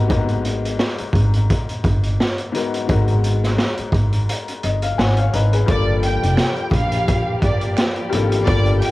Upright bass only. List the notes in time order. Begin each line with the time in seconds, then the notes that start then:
Already playing: G#1
1.00 muted upright bass stroke
1.13 G#1
1.84 G1
2.89 G#1
3.79 muted upright bass stroke
3.92 G#1
4.64 G1
4.99 G#1
5.33 G#1
5.68 G1
6.23 F1
6.71 A#1
7.42 G1
8.13 G#1
8.47 G1